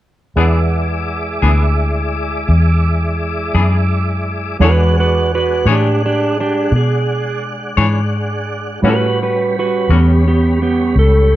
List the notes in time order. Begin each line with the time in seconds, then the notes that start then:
0.35 E2 E3 G#3 B3 D4 E4 G#4 B4 D5 F#5
1.42 D2 E3 B3 D4 G#4
2.49 E2
3.55 F#2 E3 B3 D4 G#4
4.59 E2 E3 G#3 D4 G#4 C#5 D5 F#5
4.64 F#4 B4
5.00 F#4 B4
5.35 F#4 B4
5.66 A2 E3 D4 G#4 C#5
5.71 D4 G4
6.06 D4 G4
6.40 D4 G4
6.72 B2
6.76 G#4
7.77 G#2 E3 D4 G#4 C#5
8.82 A2 G3 C#4 F#4 B4 C#5 F#5
8.88 F#4 B4
9.23 F#4 B4
9.59 F#4 B4
9.89 E2 A2 G3 B3 C#4 F#4 G4
10.28 B3 G4
10.62 B3 G4
10.96 C#2 A4